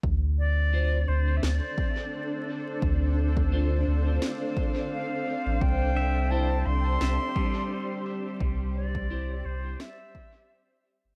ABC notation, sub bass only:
X:1
M:4/4
L:1/16
Q:"Swing 16ths" 1/4=86
K:Dm
V:1 name="Sub bass" clef=bass
D,,6 D,,2 D,, z6 z | D,,6 D,,2 z6 z A,,, | C,,6 C,,2 C,, z6 z | C,,6 C,,2 z6 z G,,, |]